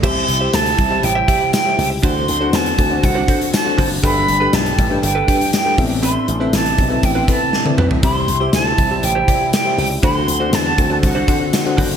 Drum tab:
CC |x---------------|----------------|----------------|----------------|
HH |--x-xxx-x-x-x-o-|x-x-xxx-x-xxx-o-|x-x-xxx-x-xxx-o-|x-x-xxx-x-x-----|
TB |----x-------x---|----x-------x---|----x-------x---|----x-----------|
SD |----o-------o---|----o-------o---|----o-------o---|----o-------o---|
T1 |----------------|----------------|----------------|-------------o--|
T2 |----------------|----------------|----------------|--------------o-|
FT |----------------|----------------|----------------|---------------o|
BD |o-----o---o-----|o-----o-o-o---o-|o-----o---o---o-|------o-o-o-----|

CC |----------------|----------------|
HH |x-x-x-x-x-x-x-o-|x-x-x-x-x-x-x-o-|
TB |----x-------x---|----x-------x---|
SD |----o-------o---|----o-------o---|
T1 |----------------|----------------|
T2 |----------------|----------------|
FT |----------------|----------------|
BD |o-----o---o-----|o-----o-o-o---o-|